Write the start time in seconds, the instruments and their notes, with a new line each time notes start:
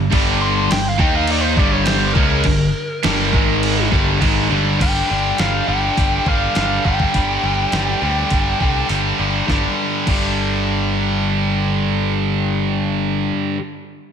Already playing: picked electric bass G1
0.12 picked electric bass G1, distorted electric guitar G2 D3 G3, kick, crash
0.42 lead electric guitar C6
0.71 picked electric bass G1, distorted electric guitar G2 D3, lead electric guitar G5, snare, crash
0.89 lead electric guitar F5
0.99 picked electric bass D#2, distorted electric guitar D#3 A#3 D#4, lead electric guitar G5, kick
1.16 lead electric guitar F5
1.27 lead electric guitar D5, crash
1.42 lead electric guitar C5
1.57 picked electric bass G1, distorted electric guitar G2 D3 G3, lead electric guitar D5, kick, snare
1.73 lead electric guitar C#5
1.84 lead electric guitar C5, snare, crash
2.13 picked electric bass C#2, distorted electric guitar C#3 G#3 C#4, lead electric guitar A#4, kick
2.44 picked electric bass G1, distorted electric guitar G2 D3, kick, crash
3.03 picked electric bass G1, distorted electric guitar G2 D3 G3, snare, crash
3.33 picked electric bass G#1, distorted electric guitar G#2 D#3 G#3, kick
3.63 crash
3.92 picked electric bass G1, distorted electric guitar G2 D3 G3, kick, snare
4.21 picked electric bass G#1, distorted electric guitar G#2 D#3 G#3, kick, crash
4.50 picked electric bass G1, distorted electric guitar G2 D3 G3
4.80 picked electric bass G1, distorted electric guitar G2 D3 G3, lead electric guitar G5, kick, open hi-hat, crash
5.10 picked electric bass G1, distorted electric guitar G2 D3 G3
5.38 picked electric bass G1, distorted electric guitar G2 D3 G3, lead electric guitar F5, snare, open hi-hat
5.68 picked electric bass G1, distorted electric guitar G2 D3 G3, lead electric guitar G5
5.97 picked electric bass G1, distorted electric guitar G2 D3 G3, kick, open hi-hat
6.26 picked electric bass G1, distorted electric guitar G2 D3 G3, lead electric guitar F5, kick
6.55 picked electric bass G1, distorted electric guitar G2 D3 G3, lead electric guitar F5, snare, open hi-hat
6.85 picked electric bass G1, distorted electric guitar G2 D3 G3, lead electric guitar G5, kick
7.00 kick
7.14 picked electric bass G1, distorted electric guitar G2 D3 G3, kick, open hi-hat
7.43 picked electric bass G1, distorted electric guitar G2 D3 G3
7.72 picked electric bass G1, distorted electric guitar G2 D3 G3, snare, open hi-hat
8.02 picked electric bass D2, distorted electric guitar G2 D3 G3
8.30 picked electric bass G1, distorted electric guitar G2 D3 G3, kick, open hi-hat
8.60 picked electric bass C2, distorted electric guitar G2 D3 G3, kick
8.89 picked electric bass G1, distorted electric guitar G2 D3 G3, open hi-hat
9.19 picked electric bass G1, distorted electric guitar G2 D3 G3
9.47 picked electric bass G1, distorted electric guitar G2 D3, kick, snare
9.52 distorted electric guitar G3
10.07 picked electric bass G1, distorted electric guitar G2 D3, kick, crash
10.12 distorted electric guitar G3